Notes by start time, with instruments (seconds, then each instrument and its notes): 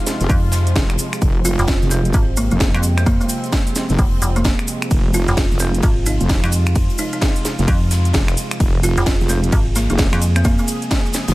Already playing: analog synth pad C3 F3 G#3 F4
0.06 snare, closed hi-hat, open hi-hat, cabasa
0.20 wobble bass F1, snare, closed hi-hat, cabasa
0.29 fm bass F2, kick, closed hi-hat, open hi-hat, cabasa
0.52 snare, closed hi-hat, open hi-hat, cabasa
0.67 closed hi-hat, cabasa
0.76 wobble bass F1, kick, snare, closed hi-hat, cabasa
0.90 finger snap, cabasa
0.98 closed hi-hat, open hi-hat, cabasa
1.13 finger snap, closed hi-hat, cabasa
1.22 wobble bass F1, analog synth pad C4, kick, closed hi-hat, cabasa
1.45 kalimba F4, closed hi-hat, open hi-hat, cabasa
1.58 fm bass F1, snare, closed hi-hat, cabasa
1.68 kick, snare, closed hi-hat, cabasa
1.82 wobble bass F1, snare, cabasa
1.91 kalimba C4, closed hi-hat, open hi-hat, cabasa
2.05 closed hi-hat, cabasa
2.13 fm bass G#1, kick, closed hi-hat, cabasa
2.37 kalimba A#3, closed hi-hat, open hi-hat, cabasa
2.51 wobble bass F1, kalimba A#3, closed hi-hat, cabasa
2.60 kick, snare, closed hi-hat, cabasa
2.75 fm bass F2, finger snap, cabasa
2.83 closed hi-hat, open hi-hat, cabasa
2.98 kalimba C4, finger snap, closed hi-hat, cabasa
3.06 kalimba A#3, kick, closed hi-hat, cabasa
3.21 kalimba A#3, closed hi-hat, cabasa
3.29 closed hi-hat, open hi-hat, cabasa
3.44 closed hi-hat, cabasa
3.52 kick, snare, closed hi-hat, cabasa
3.67 open hi-hat, cabasa
3.75 snare, closed hi-hat, open hi-hat, cabasa
3.89 wobble bass F1, snare, closed hi-hat, cabasa
3.98 fm bass F1, kick, closed hi-hat, open hi-hat, cabasa
4.21 fm bass F1, closed hi-hat, open hi-hat, cabasa
4.36 kalimba A#3, closed hi-hat, cabasa
4.44 kick, snare, closed hi-hat, cabasa
4.59 finger snap, cabasa
4.68 closed hi-hat, open hi-hat, cabasa
4.82 finger snap, closed hi-hat, cabasa
4.91 wobble bass F1, analog synth pad F4, kick, closed hi-hat, ride, cabasa
5.14 kalimba F4, closed hi-hat, open hi-hat, cabasa
5.28 fm bass F1, snare, closed hi-hat, cabasa
5.37 kick, snare, closed hi-hat, ride, cabasa
5.51 wobble bass F1, snare, cabasa
5.59 kalimba C4, closed hi-hat, open hi-hat, cabasa
5.74 closed hi-hat, cabasa
5.82 fm bass G#1, kick, closed hi-hat, ride, cabasa
6.06 kalimba D#4, closed hi-hat, open hi-hat, cabasa
6.21 wobble bass F1, closed hi-hat, cabasa
6.29 kick, snare, closed hi-hat, ride, cabasa
6.44 fm bass F2, finger snap, cabasa
6.52 closed hi-hat, open hi-hat, cabasa
6.66 finger snap, closed hi-hat, cabasa
6.75 kick, closed hi-hat, ride, cabasa
6.90 closed hi-hat, cabasa
6.98 kalimba D#4, closed hi-hat, open hi-hat, cabasa
7.13 kalimba D#4, closed hi-hat, cabasa
7.21 kick, snare, closed hi-hat, ride, cabasa
7.36 open hi-hat, cabasa
7.45 snare, closed hi-hat, open hi-hat, cabasa
7.58 wobble bass F1, snare, closed hi-hat, cabasa
7.68 fm bass F2, kick, closed hi-hat, open hi-hat, ride, cabasa
7.91 snare, closed hi-hat, open hi-hat, cabasa
8.05 closed hi-hat, cabasa
8.13 wobble bass F1, kick, snare, closed hi-hat, ride, cabasa
8.28 finger snap, cabasa
8.37 closed hi-hat, open hi-hat, cabasa
8.51 finger snap, closed hi-hat, cabasa
8.60 wobble bass F1, analog synth pad G#4, kick, closed hi-hat, ride, cabasa
8.83 kalimba F4, closed hi-hat, open hi-hat, cabasa
8.97 fm bass F1, snare, closed hi-hat, cabasa
9.06 kick, snare, closed hi-hat, ride, cabasa
9.21 wobble bass F1, snare, cabasa
9.29 kalimba C4, closed hi-hat, open hi-hat, cabasa
9.43 closed hi-hat, cabasa
9.52 fm bass G#1, kick, closed hi-hat, ride, cabasa
9.75 kalimba A#3, snare, closed hi-hat, open hi-hat, cabasa
9.90 wobble bass F1, kalimba A#3, closed hi-hat, cabasa
9.98 kick, snare, closed hi-hat, ride, cabasa
10.13 fm bass F2, finger snap, cabasa
10.21 closed hi-hat, open hi-hat, cabasa
10.36 kalimba C4, finger snap, closed hi-hat, cabasa
10.44 kalimba A#3, kick, closed hi-hat, ride, cabasa
10.58 kalimba A#3, closed hi-hat, cabasa
10.68 closed hi-hat, open hi-hat, cabasa
10.82 closed hi-hat, cabasa
10.91 kick, snare, closed hi-hat, ride, cabasa
11.06 cabasa
11.13 snare, closed hi-hat, open hi-hat, cabasa
11.28 wobble bass F1, snare, closed hi-hat, cabasa